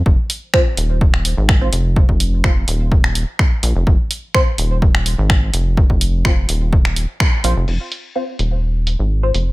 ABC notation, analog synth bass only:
X:1
M:4/4
L:1/16
Q:1/4=126
K:Fm
V:1 name="Analog synth bass" clef=bass
F,,, z4 z E,,,4- E,,, A,,,3 F,,,2- | F,,, F,,,4- F,,, E,,,4- E,,, z3 B,,, F,,, | F,,, z4 z E,,,4- E,,, A,,,3 F,,,2- | F,,, F,,,4- F,,, E,,,4- E,,, z3 B,,, F,,, |
F,,, z4 z E,,,4- E,,, A,,,3 F,,,2 |]